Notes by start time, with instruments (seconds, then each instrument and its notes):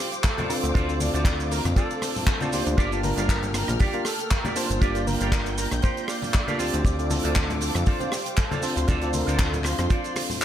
Already playing: string section C5 F5 D6
0.00 analog synth lead G4, shaker
0.12 closed hi-hat, shaker
0.24 analog synth lead A4, kick, clap, closed hi-hat, muted conga, shaker
0.37 clean electric guitar F4 A4 C5 D5, closed hi-hat, high conga, low conga, shaker
0.49 tine electric piano C4 D4 F4 A4, analog synth lead C5, open hi-hat, shaker
0.63 analog synth bass D2, closed hi-hat, shaker
0.74 analog synth bass D2, clean electric guitar F4 A4 C5 D5, kick, closed hi-hat, muted conga, shaker
0.88 tine electric piano C4 D4 F4 A4, closed hi-hat, shaker
1.00 analog synth lead D5, open hi-hat, high conga, shaker
1.13 analog synth bass D2, clean electric guitar F4 A4 C5 D5, closed hi-hat, muted conga, shaker
1.25 kick, clap, closed hi-hat, shaker
1.39 muted clean electric guitar stroke, closed hi-hat, shaker
1.51 analog synth lead A#4, open hi-hat, shaker
1.65 analog synth bass F2, cross-stick, closed hi-hat, muted conga, high conga, shaker
1.75 clean electric guitar F4 A4 C5 D5, analog synth lead A4, kick, closed hi-hat, shaker
1.91 closed hi-hat, shaker
2.02 cross-stick, open hi-hat, muted conga, shaker
2.16 open hi-hat, low conga, shaker
2.27 kick, clap, closed hi-hat, shaker
2.40 tine electric piano C4 D4 F4 A4, clean electric guitar F4 A4 C5 D5, closed hi-hat, high conga, shaker
2.52 analog synth bass D2, tine electric piano A#3 D4 F4 G4, analog synth lead C5, open hi-hat, muted conga, shaker
2.67 analog synth bass D2, closed hi-hat, shaker
2.77 analog synth bass G1, string section A#3 G5 F6, clean electric guitar F4 G4 A#4 D5, analog synth lead D5, kick, closed hi-hat, shaker
2.91 tine electric piano A#3 D4 F4 A5, closed hi-hat, shaker
3.03 analog synth lead A#4, open hi-hat, muted conga, high conga, shaker
3.17 analog synth bass G1, clean electric guitar F4 G4 A#4 D5, closed hi-hat, shaker
3.29 kick, clap, closed hi-hat, shaker
3.43 closed hi-hat, low conga, shaker
3.54 analog synth lead A#4, cross-stick, open hi-hat, muted conga, shaker
3.68 analog synth bass A#1, cross-stick, closed hi-hat, high conga, shaker
3.79 clean electric guitar F4 G4 A#4 D5, analog synth lead G4, kick, open hi-hat, shaker
3.93 tine electric piano A#3 D4 F4 A#4, closed hi-hat, muted conga, shaker
4.05 analog synth lead A4, cross-stick, open hi-hat, shaker
4.19 closed hi-hat, shaker
4.30 analog synth lead A#4, kick, clap, closed hi-hat, shaker
4.44 clean electric guitar F4 G4 A#4 D5, closed hi-hat, muted conga, high conga, low conga, shaker
4.56 tine electric piano A#3 D4 F4 A5, analog synth lead C5, open hi-hat, shaker
4.70 analog synth bass G1, closed hi-hat, shaker
4.81 analog synth bass G1, clean electric guitar F4 G4 A#4 D5, analog synth lead D5, string section G6, kick, closed hi-hat, muted conga, shaker
4.94 tine electric piano A#3 D4 F4, closed hi-hat, shaker
5.07 analog synth lead A#4, open hi-hat, high conga, shaker
5.20 analog synth bass G1, clean electric guitar F4 G4 A#4 D5, closed hi-hat, shaker
5.32 kick, clap, closed hi-hat, muted conga, shaker
5.46 muted clean electric guitar stroke, closed hi-hat, shaker
5.58 analog synth lead A#4, clean electric guitar A#5, open hi-hat, shaker
5.71 analog synth bass A#1, cross-stick, closed hi-hat, muted conga, high conga, shaker
5.82 clean electric guitar F4 G4 A#4 D5 G5, analog synth lead C5, kick, closed hi-hat, shaker
5.97 closed hi-hat, shaker
6.08 analog synth lead D5, clean electric guitar F5, cross-stick, open hi-hat, shaker
6.22 open hi-hat, muted conga, low conga, shaker
6.34 clean electric guitar D5, kick, clap, closed hi-hat, shaker
6.47 tine electric piano A#3 D4 F4 A4, clean electric guitar F4 G4 A#4 D5, closed hi-hat, high conga, shaker
6.58 analog synth bass D2, tine electric piano C4 D4 F4 G4, clean electric guitar F4 A4 C5 D5, analog synth lead C5, string section C5 F5 D6, open hi-hat, muted conga, shaker
6.74 analog synth bass D2, closed hi-hat, shaker
6.85 analog synth bass D2, analog synth lead D5, kick, closed hi-hat, shaker
6.98 tine electric piano C4 D4 F4 A4, closed hi-hat, shaker
7.10 analog synth lead A4, open hi-hat, muted conga, high conga, shaker
7.23 analog synth bass D2, clean electric guitar F4 A4 C5 D5, closed hi-hat, shaker
7.35 kick, clap, closed hi-hat, shaker
7.49 muted clean electric guitar stroke, closed hi-hat, muted conga, low conga, shaker
7.61 analog synth lead A4, open hi-hat, shaker
7.75 analog synth bass F2, cross-stick, closed hi-hat, high conga, shaker
7.86 clean electric guitar F4 A4 C5 D5, analog synth lead F4, kick, open hi-hat, shaker
8.00 tine electric piano C4 D4 F4 C5, closed hi-hat, muted conga, shaker
8.12 analog synth lead G4, cross-stick, open hi-hat, shaker
8.26 closed hi-hat, shaker
8.37 analog synth lead A4, kick, clap, closed hi-hat, muted conga, shaker
8.50 clean electric guitar F4 A4 C5 D5, closed hi-hat, high conga, low conga, shaker
8.62 tine electric piano C4 D4 F4 A4, analog synth lead C5, string section C6, open hi-hat, shaker
8.77 analog synth bass D2, closed hi-hat, shaker
8.87 analog synth bass D2, clean electric guitar F4 A4 C5 D5, analog synth lead D5, kick, closed hi-hat, muted conga, shaker
9.02 tine electric piano C4 D4 F4 A4, closed hi-hat, shaker
9.13 analog synth lead A#4, open hi-hat, high conga, shaker
9.27 analog synth bass D2, clean electric guitar F4 A4 C5 D5, closed hi-hat, muted conga, shaker
9.39 analog synth lead A4, kick, clap, closed hi-hat, shaker
9.52 muted clean electric guitar stroke, closed hi-hat, low conga, shaker
9.64 analog synth lead F4, cross-stick, clap, open hi-hat, shaker
9.78 analog synth bass F2, cross-stick, closed hi-hat, muted conga, high conga, shaker
9.89 clean electric guitar F4 A4 C5 D5, kick, closed hi-hat, shaker
10.04 closed hi-hat, shaker
10.16 cross-stick, open hi-hat, muted conga, shaker
10.30 open hi-hat, low conga, shaker
10.41 clap, closed hi-hat, shaker